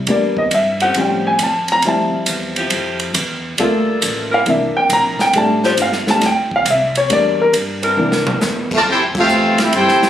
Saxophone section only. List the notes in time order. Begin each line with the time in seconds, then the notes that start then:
0.81 F3 A3 C#4 G4
2.57 F3 C4 E4 G4
3.58 G3 F4 A4
4.31 E3 C4 D4 A#4
5.64 F3 A3 D4 G4
7.82 E3 C4 D4 A#4